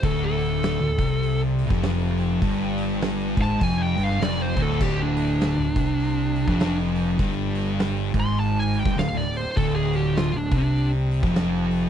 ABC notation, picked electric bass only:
X:1
M:4/4
L:1/16
Q:"Swing" 1/4=101
K:Dm
V:1 name="Picked electric bass" clef=bass
D,,,4- D,,, D,,, C,,4- C,, F,,,4- F,,, | G,,,6 ^G,,,2 F,,,2 =G,,,2 F,,,2 D,,,2 | D,,,4- D,,, D,,, C,,4- C,, F,,,4- F,,, | G,,,6 ^G,,,4- G,,, =G,,, D,,, D,,,2 z |
D,,,4- D,,, D,,, C,,4- C,, F,,,4- F,,, |]